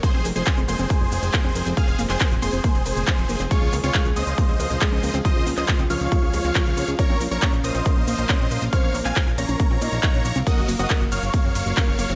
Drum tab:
RD |----------------|----------------|----------------|----------------|
HH |x-oxxxoxx-oxx-ox|xxoxxxoxxxoxxxox|x-oxxxoxx-oxx-ox|x-oxxxoxx-oxxxox|
SH |x-xxx-xxx-xxx-xx|x-xxx-xxx-xxx-xx|x-xxx-xxx-xxx-xx|x-xxx-xxx-xxx-xx|
CP |----x-------x---|---xx-------x---|----x-------x---|---xx-------x---|
BD |o---o---o---o---|o---o---o---o---|o---o---o---o---|o---o---o---o---|

RD |----------------|----------------|x-x-x-x-x-x-x-x-|
HH |x-oxxxoxx-oxx-ox|x-oxxxoxx-oxxxox|x-oxxxoxx-oxx-ox|
SH |x-xxx-xxx-xxx-xx|x-xxx-xxx-xxx-xx|x-xxx-xxx-xxx-xx|
CP |----x-------x---|---xx-------x---|----x-------x---|
BD |o---o---o---o---|o---o---o---o---|o---o---o---o---|